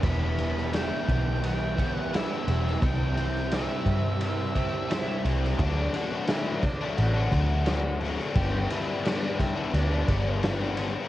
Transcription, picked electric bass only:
\new Staff \with { instrumentName = "Picked electric bass" } { \clef bass \time 4/4 \key d \mixolydian \tempo 4 = 87 e,,4. b,,2 e,,8 | c,4. g,2 c,8 | d,8 r4. a,,8 d,4. | g,,8 r4. d,8 g,,4. | }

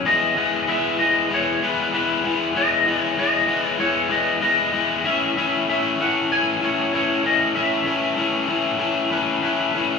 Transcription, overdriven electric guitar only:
\new Staff \with { instrumentName = "Overdriven electric guitar" } { \time 4/4 \key e \major \tempo 4 = 96 <e gis b e'>8 <e gis b e'>8 <e gis b e'>8 <e gis b e'>8 <e gis b e'>8 <e gis b e'>8 <e gis b e'>8 <e gis b e'>8 | <e gis b e'>8 <e gis b e'>8 <e gis b e'>8 <e gis b e'>8 <e gis b e'>8 <e gis b e'>8 <e gis b e'>8 <e gis b e'>8 | <a, e a cis' e'>8 <a, e a cis' e'>8 <a, e a cis' e'>8 <a, e a cis' e'>8 <a, e a cis' e'>8 <a, e a cis' e'>8 <a, e a cis' e'>8 <a, e a cis' e'>8 | <a, e a cis' e'>8 <a, e a cis' e'>8 <a, e a cis' e'>8 <a, e a cis' e'>8 <a, e a cis' e'>8 <a, e a cis' e'>8 <a, e a cis' e'>8 <a, e a cis' e'>8 | }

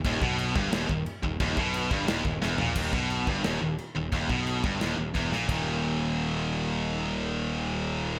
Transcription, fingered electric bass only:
\new Staff \with { instrumentName = "Fingered electric bass" } { \clef bass \time 4/4 \tempo 4 = 176 ees,,8 ces,4 g,,8 ees,,8 ees,,8 r8 ees,,8 | ees,,8 ces,4 g,,8 ees,,8 ees,,8 fes,,8 bes,,8 | ees,,8 ces,4 g,,8 ees,,8 ees,,8 r8 ees,,8 | ees,,8 ces,4 g,,8 ees,,8 ees,,8 fes,,8 bes,,8 |
ees,,1~ | ees,,1 | }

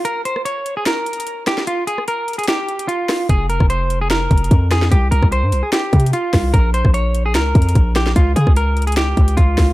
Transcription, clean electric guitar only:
\new Staff \with { instrumentName = "Clean electric guitar" } { \time 4/4 \key f \minor \tempo 4 = 148 bes'8 c''8 des''8. aes'16 bes'4. g'8 | f'8 aes'8 bes'8. aes'16 g'4 f'4 | aes'8 bes'8 c''8. aes'16 bes'4. aes'8 | g'8 bes'8 c''8. aes'16 g'4 f'4 |
bes'8 c''8 des''8. aes'16 bes'4. g'8 | f'8 aes'8 bes'8. aes'16 g'4 f'4 | }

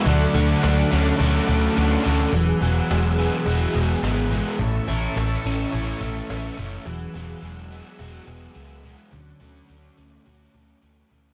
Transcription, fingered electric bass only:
\new Staff \with { instrumentName = "Fingered electric bass" } { \clef bass \time 4/4 \key e \mixolydian \tempo 4 = 106 d,8 d,8 d,8 d,8 d,8 d,8 d,8 d,8 | e,,8 e,,8 e,,4 e,,8 e,,8 gis,,4 | a,,8 a,,8 a,,8 a,,8 a,,8 a,,8 a,,8 fis,,8 | e,,8 e,,8 e,,4 e,,8 e,,8 cis,4 |
d,8 d,8 d,8 d,8 d,8 d,8 d,8 d,8 | }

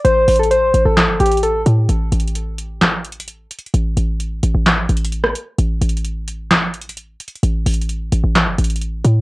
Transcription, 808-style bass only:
\new Staff \with { instrumentName = "808-style bass" } { \clef bass \time 4/4 \key g \mixolydian \tempo 4 = 130 a,,8 a,,4 a,,16 a,,8 g,,16 a,,4 a,8 | a,,8 a,,2. r8 | a,,8 a,,4 a,,16 a,,8. a,,4 r8 | a,,8 a,,2. r8 |
a,,8 a,,4 a,,16 a,,8 g,,16 a,,4 a,8 | }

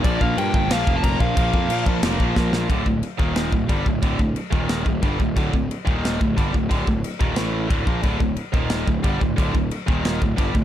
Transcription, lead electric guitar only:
\new Staff \with { instrumentName = "Lead electric guitar" } { \time 4/4 \key d \phrygian \tempo 4 = 180 d''8 f''8 g''8 g''8 f''8. a''16 bes''8 f''8~ | f''4. r2 r8 | r1 | r1 |
r1 | r1 | r1 | r1 | }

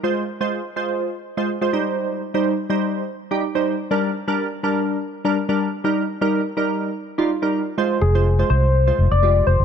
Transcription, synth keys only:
\new Staff \with { instrumentName = "Synth keys" } { \time 4/4 \key f \dorian \tempo 4 = 124 <aes f' c''>8 r16 <aes f' c''>8 r16 <aes f' c''>8. r8 <aes f' c''>16 r16 <aes f' c''>16 <g ees' c''>8~ | <g ees' c''>8 r16 <g ees' c''>8 r16 <g ees' c''>8. r8 <g ees' g'>16 r16 <g ees' c''>8 r16 | <g d' bes'>8 r16 <g d' bes'>8 r16 <g d' bes'>8. r8 <g d' bes'>16 r16 <g d' bes'>8 r16 | <g ees' bes'>8 r16 <g ees' bes'>8 r16 <g ees' bes'>8. r8 <g ees' f'>16 r16 <g ees' bes'>8 r16 |
<aes f' c''>8 r16 <aes f' c''>16 r16 <aes f' c''>8 r8 <aes f' c''>8 r16 <aes f' g'>8 r8 | }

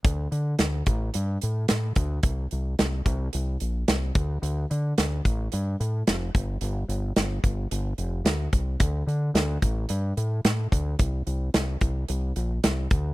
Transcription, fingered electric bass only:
\new Staff \with { instrumentName = "Fingered electric bass" } { \clef bass \time 4/4 \key d \minor \tempo 4 = 110 d,8 d8 d,8 a,,8 g,8 a,8 a,8 d,8 | c,8 c,8 c,8 c,8 c,8 bes,,8 c,8 d,8 | d,8 d8 d,8 a,,8 g,8 a,8 f,,8 g,,8 | g,,8 g,,8 g,,8 g,,8 g,,8 f,,8 d,8 c,8 |
d,8 d8 d,8 a,,8 g,8 a,8 a,8 d,8 | c,8 c,8 c,8 c,8 c,8 bes,,8 c,8 d,8 | }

